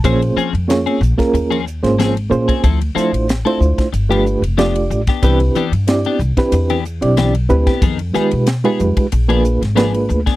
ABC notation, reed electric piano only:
X:1
M:4/4
L:1/16
Q:"Swing 16ths" 1/4=92
K:Bbm
V:1 name="Reed electric piano"
[B,DFAc]3 z [B,DFAd]2 z [B,DFAB]3 z [B,DFAc]2 z [B,DFAc]2 | z2 [=A,=D=EFc]2 z [A,DEFc]3 z [A,DF=G=B]2 z [A,DFG=d]3 z | [C=D=E=G=B]3 z [CDEG=d]2 z [CDEGB]3 z [CDEGd]2 z [CDEGB]2 | z2 [A,EF=G_c]2 z [A,EFGc]3 z [B,=DFAc]2 z [B,DFAc]3 z |]